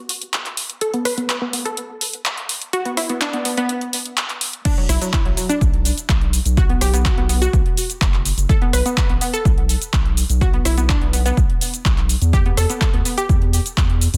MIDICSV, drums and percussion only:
0, 0, Header, 1, 2, 480
1, 0, Start_track
1, 0, Tempo, 480000
1, 814, Time_signature, 4, 2, 24, 8
1, 14171, End_track
2, 0, Start_track
2, 0, Title_t, "Drums"
2, 93, Note_on_c, 9, 46, 106
2, 193, Note_off_c, 9, 46, 0
2, 215, Note_on_c, 9, 42, 52
2, 315, Note_off_c, 9, 42, 0
2, 334, Note_on_c, 9, 42, 80
2, 336, Note_on_c, 9, 39, 124
2, 434, Note_off_c, 9, 42, 0
2, 436, Note_off_c, 9, 39, 0
2, 456, Note_on_c, 9, 42, 35
2, 458, Note_on_c, 9, 39, 36
2, 556, Note_off_c, 9, 42, 0
2, 558, Note_off_c, 9, 39, 0
2, 573, Note_on_c, 9, 46, 107
2, 673, Note_off_c, 9, 46, 0
2, 696, Note_on_c, 9, 42, 52
2, 796, Note_off_c, 9, 42, 0
2, 813, Note_on_c, 9, 42, 76
2, 913, Note_off_c, 9, 42, 0
2, 936, Note_on_c, 9, 42, 34
2, 1036, Note_off_c, 9, 42, 0
2, 1053, Note_on_c, 9, 37, 66
2, 1053, Note_on_c, 9, 46, 105
2, 1153, Note_off_c, 9, 37, 0
2, 1153, Note_off_c, 9, 46, 0
2, 1176, Note_on_c, 9, 42, 51
2, 1276, Note_off_c, 9, 42, 0
2, 1293, Note_on_c, 9, 42, 78
2, 1295, Note_on_c, 9, 39, 122
2, 1393, Note_off_c, 9, 42, 0
2, 1395, Note_off_c, 9, 39, 0
2, 1533, Note_on_c, 9, 46, 105
2, 1633, Note_off_c, 9, 46, 0
2, 1656, Note_on_c, 9, 42, 50
2, 1756, Note_off_c, 9, 42, 0
2, 1772, Note_on_c, 9, 42, 72
2, 1872, Note_off_c, 9, 42, 0
2, 2012, Note_on_c, 9, 46, 108
2, 2112, Note_off_c, 9, 46, 0
2, 2134, Note_on_c, 9, 42, 53
2, 2234, Note_off_c, 9, 42, 0
2, 2252, Note_on_c, 9, 42, 80
2, 2254, Note_on_c, 9, 39, 127
2, 2352, Note_off_c, 9, 42, 0
2, 2355, Note_off_c, 9, 39, 0
2, 2375, Note_on_c, 9, 42, 35
2, 2475, Note_off_c, 9, 42, 0
2, 2492, Note_on_c, 9, 46, 112
2, 2592, Note_off_c, 9, 46, 0
2, 2615, Note_on_c, 9, 42, 53
2, 2715, Note_off_c, 9, 42, 0
2, 2732, Note_on_c, 9, 42, 73
2, 2832, Note_off_c, 9, 42, 0
2, 2854, Note_on_c, 9, 42, 35
2, 2954, Note_off_c, 9, 42, 0
2, 2972, Note_on_c, 9, 37, 71
2, 2972, Note_on_c, 9, 46, 106
2, 3072, Note_off_c, 9, 37, 0
2, 3072, Note_off_c, 9, 46, 0
2, 3094, Note_on_c, 9, 42, 51
2, 3194, Note_off_c, 9, 42, 0
2, 3212, Note_on_c, 9, 42, 78
2, 3214, Note_on_c, 9, 39, 122
2, 3312, Note_off_c, 9, 42, 0
2, 3314, Note_off_c, 9, 39, 0
2, 3334, Note_on_c, 9, 42, 35
2, 3434, Note_off_c, 9, 42, 0
2, 3451, Note_on_c, 9, 46, 109
2, 3551, Note_off_c, 9, 46, 0
2, 3574, Note_on_c, 9, 42, 51
2, 3674, Note_off_c, 9, 42, 0
2, 3692, Note_on_c, 9, 42, 74
2, 3792, Note_off_c, 9, 42, 0
2, 3814, Note_on_c, 9, 42, 34
2, 3914, Note_off_c, 9, 42, 0
2, 3932, Note_on_c, 9, 46, 110
2, 4032, Note_off_c, 9, 46, 0
2, 4055, Note_on_c, 9, 42, 51
2, 4155, Note_off_c, 9, 42, 0
2, 4172, Note_on_c, 9, 42, 78
2, 4174, Note_on_c, 9, 39, 118
2, 4272, Note_off_c, 9, 42, 0
2, 4274, Note_off_c, 9, 39, 0
2, 4295, Note_on_c, 9, 42, 33
2, 4297, Note_on_c, 9, 39, 35
2, 4395, Note_off_c, 9, 42, 0
2, 4397, Note_off_c, 9, 39, 0
2, 4411, Note_on_c, 9, 46, 114
2, 4511, Note_off_c, 9, 46, 0
2, 4534, Note_on_c, 9, 42, 53
2, 4634, Note_off_c, 9, 42, 0
2, 4651, Note_on_c, 9, 42, 55
2, 4651, Note_on_c, 9, 49, 102
2, 4653, Note_on_c, 9, 36, 116
2, 4658, Note_on_c, 9, 69, 34
2, 4751, Note_off_c, 9, 42, 0
2, 4751, Note_off_c, 9, 49, 0
2, 4753, Note_off_c, 9, 36, 0
2, 4757, Note_off_c, 9, 69, 0
2, 4774, Note_on_c, 9, 42, 27
2, 4874, Note_off_c, 9, 42, 0
2, 4892, Note_on_c, 9, 37, 63
2, 4892, Note_on_c, 9, 46, 105
2, 4898, Note_on_c, 9, 69, 81
2, 4992, Note_off_c, 9, 37, 0
2, 4992, Note_off_c, 9, 46, 0
2, 4998, Note_off_c, 9, 69, 0
2, 5015, Note_on_c, 9, 42, 56
2, 5021, Note_on_c, 9, 69, 46
2, 5115, Note_off_c, 9, 42, 0
2, 5121, Note_off_c, 9, 69, 0
2, 5132, Note_on_c, 9, 42, 55
2, 5133, Note_on_c, 9, 36, 108
2, 5134, Note_on_c, 9, 39, 127
2, 5138, Note_on_c, 9, 69, 35
2, 5232, Note_off_c, 9, 42, 0
2, 5233, Note_off_c, 9, 36, 0
2, 5234, Note_off_c, 9, 39, 0
2, 5238, Note_off_c, 9, 69, 0
2, 5254, Note_on_c, 9, 42, 27
2, 5354, Note_off_c, 9, 42, 0
2, 5372, Note_on_c, 9, 46, 103
2, 5378, Note_on_c, 9, 69, 75
2, 5472, Note_off_c, 9, 46, 0
2, 5478, Note_off_c, 9, 69, 0
2, 5495, Note_on_c, 9, 42, 54
2, 5501, Note_on_c, 9, 69, 44
2, 5595, Note_off_c, 9, 42, 0
2, 5601, Note_off_c, 9, 69, 0
2, 5613, Note_on_c, 9, 36, 114
2, 5613, Note_on_c, 9, 42, 52
2, 5619, Note_on_c, 9, 69, 33
2, 5713, Note_off_c, 9, 36, 0
2, 5713, Note_off_c, 9, 42, 0
2, 5719, Note_off_c, 9, 69, 0
2, 5736, Note_on_c, 9, 42, 27
2, 5836, Note_off_c, 9, 42, 0
2, 5853, Note_on_c, 9, 46, 106
2, 5859, Note_on_c, 9, 69, 78
2, 5953, Note_off_c, 9, 46, 0
2, 5959, Note_off_c, 9, 69, 0
2, 5976, Note_on_c, 9, 42, 55
2, 5982, Note_on_c, 9, 69, 44
2, 6076, Note_off_c, 9, 42, 0
2, 6082, Note_off_c, 9, 69, 0
2, 6093, Note_on_c, 9, 36, 105
2, 6093, Note_on_c, 9, 42, 56
2, 6095, Note_on_c, 9, 39, 124
2, 6099, Note_on_c, 9, 69, 34
2, 6193, Note_off_c, 9, 36, 0
2, 6193, Note_off_c, 9, 42, 0
2, 6195, Note_off_c, 9, 39, 0
2, 6199, Note_off_c, 9, 69, 0
2, 6215, Note_on_c, 9, 42, 27
2, 6315, Note_off_c, 9, 42, 0
2, 6332, Note_on_c, 9, 46, 112
2, 6338, Note_on_c, 9, 69, 78
2, 6432, Note_off_c, 9, 46, 0
2, 6438, Note_off_c, 9, 69, 0
2, 6455, Note_on_c, 9, 42, 55
2, 6461, Note_on_c, 9, 69, 47
2, 6555, Note_off_c, 9, 42, 0
2, 6561, Note_off_c, 9, 69, 0
2, 6573, Note_on_c, 9, 36, 121
2, 6573, Note_on_c, 9, 42, 54
2, 6579, Note_on_c, 9, 69, 31
2, 6673, Note_off_c, 9, 36, 0
2, 6673, Note_off_c, 9, 42, 0
2, 6679, Note_off_c, 9, 69, 0
2, 6695, Note_on_c, 9, 42, 26
2, 6795, Note_off_c, 9, 42, 0
2, 6813, Note_on_c, 9, 37, 64
2, 6813, Note_on_c, 9, 46, 109
2, 6819, Note_on_c, 9, 69, 74
2, 6913, Note_off_c, 9, 37, 0
2, 6913, Note_off_c, 9, 46, 0
2, 6919, Note_off_c, 9, 69, 0
2, 6936, Note_on_c, 9, 42, 55
2, 6942, Note_on_c, 9, 69, 44
2, 7036, Note_off_c, 9, 42, 0
2, 7042, Note_off_c, 9, 69, 0
2, 7053, Note_on_c, 9, 42, 56
2, 7054, Note_on_c, 9, 36, 110
2, 7055, Note_on_c, 9, 39, 127
2, 7059, Note_on_c, 9, 69, 34
2, 7153, Note_off_c, 9, 42, 0
2, 7154, Note_off_c, 9, 36, 0
2, 7155, Note_off_c, 9, 39, 0
2, 7159, Note_off_c, 9, 69, 0
2, 7176, Note_on_c, 9, 42, 26
2, 7276, Note_off_c, 9, 42, 0
2, 7293, Note_on_c, 9, 46, 108
2, 7299, Note_on_c, 9, 69, 73
2, 7393, Note_off_c, 9, 46, 0
2, 7399, Note_off_c, 9, 69, 0
2, 7416, Note_on_c, 9, 42, 53
2, 7422, Note_on_c, 9, 69, 44
2, 7516, Note_off_c, 9, 42, 0
2, 7522, Note_off_c, 9, 69, 0
2, 7534, Note_on_c, 9, 36, 121
2, 7534, Note_on_c, 9, 42, 51
2, 7540, Note_on_c, 9, 69, 31
2, 7634, Note_off_c, 9, 36, 0
2, 7634, Note_off_c, 9, 42, 0
2, 7640, Note_off_c, 9, 69, 0
2, 7657, Note_on_c, 9, 42, 26
2, 7757, Note_off_c, 9, 42, 0
2, 7774, Note_on_c, 9, 46, 110
2, 7781, Note_on_c, 9, 69, 75
2, 7874, Note_off_c, 9, 46, 0
2, 7881, Note_off_c, 9, 69, 0
2, 7897, Note_on_c, 9, 42, 55
2, 7903, Note_on_c, 9, 69, 43
2, 7997, Note_off_c, 9, 42, 0
2, 8003, Note_off_c, 9, 69, 0
2, 8014, Note_on_c, 9, 36, 108
2, 8015, Note_on_c, 9, 42, 56
2, 8017, Note_on_c, 9, 39, 127
2, 8021, Note_on_c, 9, 69, 34
2, 8114, Note_off_c, 9, 36, 0
2, 8115, Note_off_c, 9, 42, 0
2, 8117, Note_off_c, 9, 39, 0
2, 8121, Note_off_c, 9, 69, 0
2, 8137, Note_on_c, 9, 42, 26
2, 8139, Note_on_c, 9, 39, 38
2, 8237, Note_off_c, 9, 42, 0
2, 8239, Note_off_c, 9, 39, 0
2, 8254, Note_on_c, 9, 46, 110
2, 8260, Note_on_c, 9, 69, 79
2, 8354, Note_off_c, 9, 46, 0
2, 8360, Note_off_c, 9, 69, 0
2, 8377, Note_on_c, 9, 42, 55
2, 8383, Note_on_c, 9, 69, 44
2, 8477, Note_off_c, 9, 42, 0
2, 8483, Note_off_c, 9, 69, 0
2, 8494, Note_on_c, 9, 36, 125
2, 8494, Note_on_c, 9, 42, 50
2, 8500, Note_on_c, 9, 69, 32
2, 8594, Note_off_c, 9, 36, 0
2, 8594, Note_off_c, 9, 42, 0
2, 8600, Note_off_c, 9, 69, 0
2, 8616, Note_on_c, 9, 42, 25
2, 8716, Note_off_c, 9, 42, 0
2, 8734, Note_on_c, 9, 37, 67
2, 8734, Note_on_c, 9, 46, 110
2, 8740, Note_on_c, 9, 69, 73
2, 8834, Note_off_c, 9, 37, 0
2, 8834, Note_off_c, 9, 46, 0
2, 8840, Note_off_c, 9, 69, 0
2, 8856, Note_on_c, 9, 42, 53
2, 8862, Note_on_c, 9, 69, 44
2, 8956, Note_off_c, 9, 42, 0
2, 8962, Note_off_c, 9, 69, 0
2, 8973, Note_on_c, 9, 42, 54
2, 8974, Note_on_c, 9, 36, 109
2, 8975, Note_on_c, 9, 39, 126
2, 8980, Note_on_c, 9, 69, 34
2, 9073, Note_off_c, 9, 42, 0
2, 9074, Note_off_c, 9, 36, 0
2, 9075, Note_off_c, 9, 39, 0
2, 9080, Note_off_c, 9, 69, 0
2, 9096, Note_on_c, 9, 42, 25
2, 9196, Note_off_c, 9, 42, 0
2, 9212, Note_on_c, 9, 46, 112
2, 9219, Note_on_c, 9, 69, 73
2, 9312, Note_off_c, 9, 46, 0
2, 9319, Note_off_c, 9, 69, 0
2, 9335, Note_on_c, 9, 42, 52
2, 9341, Note_on_c, 9, 69, 44
2, 9435, Note_off_c, 9, 42, 0
2, 9441, Note_off_c, 9, 69, 0
2, 9453, Note_on_c, 9, 36, 123
2, 9454, Note_on_c, 9, 42, 50
2, 9460, Note_on_c, 9, 69, 31
2, 9553, Note_off_c, 9, 36, 0
2, 9554, Note_off_c, 9, 42, 0
2, 9560, Note_off_c, 9, 69, 0
2, 9576, Note_on_c, 9, 42, 26
2, 9676, Note_off_c, 9, 42, 0
2, 9692, Note_on_c, 9, 46, 112
2, 9699, Note_on_c, 9, 69, 73
2, 9792, Note_off_c, 9, 46, 0
2, 9799, Note_off_c, 9, 69, 0
2, 9815, Note_on_c, 9, 42, 53
2, 9821, Note_on_c, 9, 69, 44
2, 9915, Note_off_c, 9, 42, 0
2, 9921, Note_off_c, 9, 69, 0
2, 9932, Note_on_c, 9, 42, 54
2, 9933, Note_on_c, 9, 36, 111
2, 9934, Note_on_c, 9, 39, 127
2, 9938, Note_on_c, 9, 69, 33
2, 10032, Note_off_c, 9, 42, 0
2, 10033, Note_off_c, 9, 36, 0
2, 10034, Note_off_c, 9, 39, 0
2, 10038, Note_off_c, 9, 69, 0
2, 10056, Note_on_c, 9, 42, 25
2, 10156, Note_off_c, 9, 42, 0
2, 10172, Note_on_c, 9, 46, 115
2, 10178, Note_on_c, 9, 69, 77
2, 10272, Note_off_c, 9, 46, 0
2, 10278, Note_off_c, 9, 69, 0
2, 10295, Note_on_c, 9, 42, 53
2, 10301, Note_on_c, 9, 69, 43
2, 10395, Note_off_c, 9, 42, 0
2, 10401, Note_off_c, 9, 69, 0
2, 10413, Note_on_c, 9, 36, 121
2, 10413, Note_on_c, 9, 42, 49
2, 10419, Note_on_c, 9, 69, 32
2, 10513, Note_off_c, 9, 36, 0
2, 10513, Note_off_c, 9, 42, 0
2, 10519, Note_off_c, 9, 69, 0
2, 10535, Note_on_c, 9, 42, 25
2, 10635, Note_off_c, 9, 42, 0
2, 10653, Note_on_c, 9, 37, 70
2, 10653, Note_on_c, 9, 46, 106
2, 10659, Note_on_c, 9, 69, 76
2, 10753, Note_off_c, 9, 37, 0
2, 10753, Note_off_c, 9, 46, 0
2, 10759, Note_off_c, 9, 69, 0
2, 10775, Note_on_c, 9, 42, 53
2, 10781, Note_on_c, 9, 69, 46
2, 10875, Note_off_c, 9, 42, 0
2, 10881, Note_off_c, 9, 69, 0
2, 10893, Note_on_c, 9, 36, 111
2, 10893, Note_on_c, 9, 42, 54
2, 10895, Note_on_c, 9, 39, 120
2, 10899, Note_on_c, 9, 69, 34
2, 10993, Note_off_c, 9, 36, 0
2, 10993, Note_off_c, 9, 42, 0
2, 10995, Note_off_c, 9, 39, 0
2, 10999, Note_off_c, 9, 69, 0
2, 11015, Note_on_c, 9, 42, 25
2, 11115, Note_off_c, 9, 42, 0
2, 11133, Note_on_c, 9, 46, 109
2, 11139, Note_on_c, 9, 69, 75
2, 11233, Note_off_c, 9, 46, 0
2, 11239, Note_off_c, 9, 69, 0
2, 11256, Note_on_c, 9, 42, 50
2, 11262, Note_on_c, 9, 69, 43
2, 11356, Note_off_c, 9, 42, 0
2, 11362, Note_off_c, 9, 69, 0
2, 11373, Note_on_c, 9, 36, 120
2, 11374, Note_on_c, 9, 42, 47
2, 11380, Note_on_c, 9, 69, 31
2, 11473, Note_off_c, 9, 36, 0
2, 11474, Note_off_c, 9, 42, 0
2, 11480, Note_off_c, 9, 69, 0
2, 11496, Note_on_c, 9, 42, 25
2, 11596, Note_off_c, 9, 42, 0
2, 11614, Note_on_c, 9, 46, 113
2, 11620, Note_on_c, 9, 69, 78
2, 11714, Note_off_c, 9, 46, 0
2, 11720, Note_off_c, 9, 69, 0
2, 11736, Note_on_c, 9, 42, 51
2, 11742, Note_on_c, 9, 69, 45
2, 11836, Note_off_c, 9, 42, 0
2, 11842, Note_off_c, 9, 69, 0
2, 11853, Note_on_c, 9, 36, 110
2, 11854, Note_on_c, 9, 42, 51
2, 11856, Note_on_c, 9, 39, 121
2, 11860, Note_on_c, 9, 69, 33
2, 11953, Note_off_c, 9, 36, 0
2, 11954, Note_off_c, 9, 42, 0
2, 11956, Note_off_c, 9, 39, 0
2, 11960, Note_off_c, 9, 69, 0
2, 11976, Note_on_c, 9, 42, 25
2, 11978, Note_on_c, 9, 39, 35
2, 12076, Note_off_c, 9, 42, 0
2, 12078, Note_off_c, 9, 39, 0
2, 12093, Note_on_c, 9, 46, 109
2, 12099, Note_on_c, 9, 69, 76
2, 12193, Note_off_c, 9, 46, 0
2, 12199, Note_off_c, 9, 69, 0
2, 12216, Note_on_c, 9, 42, 52
2, 12222, Note_on_c, 9, 69, 45
2, 12316, Note_off_c, 9, 42, 0
2, 12322, Note_off_c, 9, 69, 0
2, 12333, Note_on_c, 9, 36, 114
2, 12333, Note_on_c, 9, 42, 50
2, 12339, Note_on_c, 9, 69, 34
2, 12433, Note_off_c, 9, 36, 0
2, 12433, Note_off_c, 9, 42, 0
2, 12439, Note_off_c, 9, 69, 0
2, 12456, Note_on_c, 9, 42, 26
2, 12556, Note_off_c, 9, 42, 0
2, 12574, Note_on_c, 9, 37, 69
2, 12574, Note_on_c, 9, 46, 105
2, 12580, Note_on_c, 9, 69, 78
2, 12674, Note_off_c, 9, 37, 0
2, 12674, Note_off_c, 9, 46, 0
2, 12680, Note_off_c, 9, 69, 0
2, 12696, Note_on_c, 9, 42, 52
2, 12702, Note_on_c, 9, 69, 46
2, 12796, Note_off_c, 9, 42, 0
2, 12802, Note_off_c, 9, 69, 0
2, 12813, Note_on_c, 9, 36, 104
2, 12813, Note_on_c, 9, 42, 53
2, 12815, Note_on_c, 9, 39, 119
2, 12819, Note_on_c, 9, 69, 34
2, 12913, Note_off_c, 9, 36, 0
2, 12913, Note_off_c, 9, 42, 0
2, 12915, Note_off_c, 9, 39, 0
2, 12919, Note_off_c, 9, 69, 0
2, 12936, Note_on_c, 9, 42, 25
2, 13036, Note_off_c, 9, 42, 0
2, 13054, Note_on_c, 9, 46, 102
2, 13060, Note_on_c, 9, 69, 75
2, 13154, Note_off_c, 9, 46, 0
2, 13160, Note_off_c, 9, 69, 0
2, 13176, Note_on_c, 9, 42, 51
2, 13182, Note_on_c, 9, 69, 45
2, 13276, Note_off_c, 9, 42, 0
2, 13282, Note_off_c, 9, 69, 0
2, 13294, Note_on_c, 9, 36, 119
2, 13294, Note_on_c, 9, 42, 48
2, 13300, Note_on_c, 9, 69, 33
2, 13394, Note_off_c, 9, 36, 0
2, 13394, Note_off_c, 9, 42, 0
2, 13400, Note_off_c, 9, 69, 0
2, 13416, Note_on_c, 9, 42, 25
2, 13516, Note_off_c, 9, 42, 0
2, 13534, Note_on_c, 9, 46, 106
2, 13540, Note_on_c, 9, 69, 79
2, 13634, Note_off_c, 9, 46, 0
2, 13640, Note_off_c, 9, 69, 0
2, 13657, Note_on_c, 9, 42, 52
2, 13663, Note_on_c, 9, 69, 45
2, 13757, Note_off_c, 9, 42, 0
2, 13763, Note_off_c, 9, 69, 0
2, 13774, Note_on_c, 9, 36, 107
2, 13775, Note_on_c, 9, 42, 53
2, 13777, Note_on_c, 9, 39, 118
2, 13781, Note_on_c, 9, 69, 34
2, 13874, Note_off_c, 9, 36, 0
2, 13875, Note_off_c, 9, 42, 0
2, 13877, Note_off_c, 9, 39, 0
2, 13881, Note_off_c, 9, 69, 0
2, 13897, Note_on_c, 9, 42, 25
2, 13997, Note_off_c, 9, 42, 0
2, 14014, Note_on_c, 9, 46, 108
2, 14020, Note_on_c, 9, 69, 81
2, 14114, Note_off_c, 9, 46, 0
2, 14120, Note_off_c, 9, 69, 0
2, 14137, Note_on_c, 9, 42, 52
2, 14171, Note_off_c, 9, 42, 0
2, 14171, End_track
0, 0, End_of_file